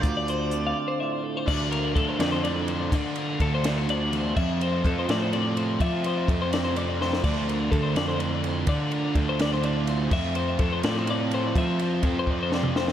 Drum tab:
CC |------------|x-----------|------------|x-----------|
RD |------------|--x-x-x-x-x-|x-x-x-x-x-x-|--x-x-x-x-x-|
HH |x-x-x-------|------------|------------|------------|
SD |------------|------o-----|------o-----|------o-----|
T2 |------------|------------|------------|------------|
BD |o-----------|o---o-------|o---o-------|o---o-------|

CC |------------|x-----------|------------|x-----------|
RD |x-x-x-x-x---|--x-x-x-x-x-|x-x-x-x-x-x-|--x-x-x-x-x-|
HH |------------|------------|------------|------------|
SD |------o---oo|------o-----|------o-----|------o-----|
T2 |------------|------------|------------|------------|
BD |o---o-------|o---o-------|o---o-------|o---o-------|

CC |------------|
RD |x-x-x-------|
HH |------------|
SD |--------o-oo|
T2 |---------o--|
BD |o---o-o-----|